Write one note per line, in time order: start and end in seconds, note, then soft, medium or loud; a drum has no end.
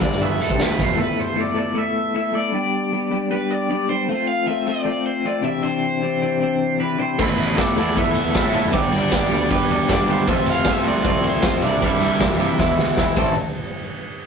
0.00 0.38 G1 medium
0.00 0.39 G2 loud
0.00 0.19 E3 medium
0.00 0.20 A3 loud
0.00 0.21 B3 loud
0.00 0.22 E4 medium
0.00 0.21 D5 medium
0.00 kick loud
0.00 closed hi-hat medium
0.12 snare soft
0.20 0.97 E3 medium
0.20 0.98 A3 medium
0.20 0.99 B3 medium
0.20 0.41 E5 medium
0.24 0.99 E4 medium
0.39 0.50 E1 medium
0.39 0.50 E2 medium
0.39 0.60 A4 medium
0.39 closed hi-hat medium
0.49 0.59 C2 medium
0.49 0.57 C3 loud
0.49 kick loud
0.58 0.78 D2 medium
0.58 0.77 D3 loud
0.58 snare loud
0.63 0.81 B4 medium
0.78 0.87 B1 medium
0.78 0.88 B2 loud
0.78 1.00 C5 medium
0.78 kick medium
0.78 closed hi-hat medium
0.86 0.98 E1 medium
0.86 0.97 E2 loud
0.95 1.35 A3 medium
0.95 1.35 B3 loud
0.95 1.35 E4 loud
0.95 1.35 A4 loud
1.01 1.19 B4 medium
1.19 1.39 C5 medium
1.35 1.52 A3 medium
1.35 1.54 B3 medium
1.35 1.53 E4 medium
1.35 1.53 A4 medium
1.41 1.57 D5 loud
1.53 1.73 A3 loud
1.53 1.73 B3 medium
1.53 1.74 E4 medium
1.53 1.74 A4 loud
1.59 1.78 D5 medium
1.74 2.13 A3 loud
1.74 2.13 B3 loud
1.74 2.14 E4 loud
1.74 2.14 A4 loud
1.79 2.15 E5 loud
2.14 2.31 A3 medium
2.14 2.32 B3 medium
2.14 2.32 E4 loud
2.14 2.33 A4 medium
2.14 2.35 E5 loud
2.32 2.52 A3 medium
2.32 2.51 B3 medium
2.32 2.52 E4 medium
2.32 2.53 A4 medium
2.32 3.31 D5 loud
2.52 2.91 G3 medium
2.52 2.91 B3 loud
2.52 2.92 D4 loud
2.52 2.92 G4 loud
2.92 3.10 G3 medium
2.92 3.10 B3 medium
2.92 3.10 D4 medium
2.92 3.11 G4 medium
3.11 3.29 G3 loud
3.11 3.30 B3 medium
3.11 3.30 D4 loud
3.11 3.31 G4 loud
3.30 3.68 G3 loud
3.30 3.68 B3 loud
3.30 3.69 D4 loud
3.30 3.69 G4 loud
3.30 3.51 B4 loud
3.51 3.70 D5 loud
3.70 3.88 G3 medium
3.70 3.88 B3 medium
3.70 3.88 D4 loud
3.70 3.88 G4 loud
3.70 3.89 D5 medium
3.89 4.08 G3 medium
3.89 4.07 B3 medium
3.89 4.08 D4 medium
3.89 4.08 G4 medium
3.89 4.28 C5 loud
4.08 4.46 F3 medium
4.08 4.46 A3 loud
4.08 4.48 C4 loud
4.08 4.47 F4 loud
4.28 4.47 F5 loud
4.47 4.65 F3 medium
4.47 4.65 A3 medium
4.47 4.67 C4 medium
4.47 4.66 F4 medium
4.47 4.68 E5 loud
4.66 4.84 F3 medium
4.66 4.84 A3 medium
4.66 4.84 C4 loud
4.66 4.85 F4 loud
4.66 5.06 D5 loud
4.85 5.24 F3 loud
4.85 5.24 A3 loud
4.85 5.24 C4 loud
4.85 5.24 F4 loud
5.06 5.26 C5 medium
5.25 5.42 F3 medium
5.25 5.42 A3 medium
5.25 5.41 C4 medium
5.25 5.42 F4 medium
5.25 5.45 D5 medium
5.41 5.61 C3 medium
5.41 5.62 E3 loud
5.41 5.62 C4 medium
5.41 5.63 D4 loud
5.41 5.62 G4 loud
5.41 5.63 E5 medium
5.62 6.01 C3 loud
5.62 6.01 E3 medium
5.62 6.01 C4 loud
5.62 6.01 D4 loud
5.62 6.01 G4 loud
5.62 6.80 C5 loud
6.01 6.21 C3 medium
6.01 6.22 E3 medium
6.01 6.21 C4 medium
6.01 6.21 D4 medium
6.01 6.21 G4 medium
6.22 6.39 C3 medium
6.22 6.39 E3 medium
6.22 6.39 C4 medium
6.22 6.40 D4 loud
6.22 6.40 G4 loud
6.40 6.77 C3 medium
6.40 6.78 E3 medium
6.40 6.77 C4 loud
6.40 6.78 D4 loud
6.40 6.79 G4 loud
6.78 6.96 C3 medium
6.78 6.97 E3 medium
6.78 6.97 C4 medium
6.78 6.97 D4 medium
6.78 6.97 G4 medium
6.78 7.00 B4 medium
6.83 7.00 B5 medium
6.98 7.17 C3 medium
6.98 7.17 E3 medium
6.98 7.17 C4 medium
6.98 7.17 D4 medium
6.98 7.17 G4 medium
6.98 7.23 C5 medium
7.02 7.19 C6 medium
7.18 7.27 A1 loud
7.18 7.55 A3 medium
7.18 7.55 B3 loud
7.18 7.55 E4 loud
7.18 7.55 A4 loud
7.18 7.59 B5 medium
7.18 kick loud
7.18 crash loud
7.23 7.59 B4 loud
7.38 7.55 A1 loud
7.38 ride medium
7.55 7.74 A3 medium
7.55 7.75 B3 medium
7.55 7.75 E4 medium
7.55 7.75 A4 medium
7.55 kick loud
7.55 snare loud
7.55 clap loud
7.55 ride medium
7.60 7.98 D5 medium
7.60 7.95 D6 medium
7.76 8.18 E2 loud
7.76 7.94 A3 medium
7.76 7.95 B3 medium
7.76 7.95 E4 medium
7.76 7.96 A4 medium
7.76 ride medium
7.95 8.33 A3 loud
7.95 8.33 B3 loud
7.95 8.33 E4 loud
7.95 8.34 A4 loud
7.95 8.33 E5 loud
7.95 8.33 E6 medium
7.95 kick loud
7.95 ride loud
8.15 ride medium
8.25 8.34 E2 loud
8.34 8.51 A3 medium
8.34 8.51 B3 medium
8.34 8.52 E4 medium
8.34 8.53 A4 medium
8.34 8.76 E5 medium
8.34 8.71 E6 medium
8.34 kick loud
8.34 snare loud
8.34 clap loud
8.34 ride loud
8.45 8.61 A2 medium
8.52 8.71 A3 medium
8.52 8.71 B3 medium
8.52 8.72 E4 medium
8.52 8.72 A4 loud
8.52 ride medium
8.65 8.73 F#1 loud
8.72 8.90 G1 loud
8.72 9.08 G3 loud
8.72 9.08 B3 loud
8.72 9.08 D4 loud
8.72 9.08 G4 loud
8.72 9.47 D6 medium
8.72 kick loud
8.72 ride loud
8.78 9.51 D5 medium
8.92 9.32 G1 medium
8.92 ride medium
9.09 9.28 G3 medium
9.09 9.29 B3 medium
9.09 9.29 D4 medium
9.09 9.29 G4 medium
9.09 kick loud
9.09 snare loud
9.09 clap loud
9.09 ride medium
9.29 9.48 D2 medium
9.29 9.49 G3 medium
9.29 9.49 B3 medium
9.29 9.49 D4 loud
9.29 9.50 G4 loud
9.29 ride medium
9.50 9.87 G3 loud
9.50 9.87 B3 medium
9.50 9.88 D4 loud
9.50 9.88 G4 loud
9.50 9.71 B4 loud
9.50 9.70 B5 medium
9.50 kick loud
9.50 ride loud
9.70 9.78 E1 loud
9.70 9.88 D5 loud
9.70 9.90 D6 medium
9.70 ride medium
9.88 9.98 G1 loud
9.88 10.07 G3 medium
9.88 10.08 B3 medium
9.88 10.08 D4 medium
9.88 10.08 G4 medium
9.88 10.10 D5 medium
9.88 10.08 D6 medium
9.88 kick loud
9.88 snare loud
9.88 clap loud
9.88 ride medium
10.08 10.25 G1 medium
10.08 10.26 G3 loud
10.08 10.26 B3 medium
10.08 10.27 D4 medium
10.08 10.27 G4 medium
10.08 10.29 C5 medium
10.08 10.28 C6 medium
10.08 ride medium
10.27 10.36 F1 loud
10.27 10.66 F3 loud
10.27 10.66 A3 loud
10.27 10.66 C4 loud
10.27 10.67 F4 loud
10.27 10.49 E5 loud
10.27 10.46 E6 medium
10.27 kick loud
10.27 ride loud
10.46 10.63 F1 loud
10.46 10.71 F5 loud
10.46 10.68 F6 medium
10.46 snare soft
10.46 ride medium
10.65 10.85 F3 medium
10.65 10.85 A3 medium
10.65 10.86 C4 medium
10.65 10.86 F4 medium
10.65 kick loud
10.65 snare loud
10.65 clap loud
10.65 ride loud
10.69 10.88 E5 loud
10.69 10.87 E6 medium
10.84 11.26 C2 loud
10.84 11.03 F3 medium
10.84 11.04 A3 loud
10.84 11.04 C4 medium
10.84 11.04 F4 loud
10.84 11.27 D5 loud
10.84 11.23 D6 medium
10.84 ride medium
11.04 11.43 F3 loud
11.04 11.43 A3 loud
11.04 11.43 C4 loud
11.04 11.44 F4 loud
11.04 kick loud
11.04 ride loud
11.24 11.65 C5 medium
11.24 11.62 C6 medium
11.24 ride medium
11.34 11.42 C2 loud
11.42 11.62 F3 medium
11.42 11.62 A3 medium
11.42 11.62 C4 medium
11.42 11.62 F4 loud
11.42 kick loud
11.42 snare loud
11.42 clap loud
11.42 ride loud
11.54 11.62 F2 medium
11.62 11.96 C2 loud
11.62 11.80 C3 loud
11.62 11.80 E3 loud
11.62 11.80 G3 loud
11.62 11.80 D4 loud
11.62 11.81 E4 loud
11.62 ride medium
11.67 11.85 D5 medium
11.67 11.84 D6 medium
11.81 12.18 C3 loud
11.81 12.18 E3 medium
11.81 12.19 G3 medium
11.81 12.19 D4 loud
11.81 12.19 E4 loud
11.81 13.17 E5 medium
11.81 kick loud
11.81 ride loud
11.86 13.19 E6 medium
12.01 12.39 C2 medium
12.01 snare soft
12.01 ride medium
12.19 12.39 C3 medium
12.19 12.39 E3 medium
12.19 12.39 G3 medium
12.19 12.40 D4 medium
12.19 12.40 E4 medium
12.19 kick loud
12.19 snare loud
12.19 clap loud
12.19 ride loud
12.39 12.48 G2 loud
12.39 12.58 C3 medium
12.39 12.58 E3 loud
12.39 12.58 G3 loud
12.39 12.59 D4 medium
12.39 12.59 E4 loud
12.39 ride medium
12.59 12.76 E2 loud
12.59 12.97 E3 loud
12.59 12.96 G#3 medium
12.59 12.96 B3 loud
12.59 12.97 E4 loud
12.59 kick loud
12.59 snare medium
12.78 12.86 D2 loud
12.78 snare medium
12.97 13.06 E2 medium
12.97 13.16 E3 medium
12.97 13.17 G#3 medium
12.97 13.17 B3 medium
12.97 13.17 E4 medium
12.97 kick loud
12.97 snare medium
12.97 clap medium
13.16 13.35 A1 medium
13.16 13.32 A2 medium
13.16 13.33 E3 loud
13.16 13.32 A3 loud
13.16 13.33 C4 loud
13.16 13.33 E4 loud
13.16 13.35 A5 medium
13.16 13.35 A6 medium
13.16 kick loud
13.16 clap medium
13.16 crash medium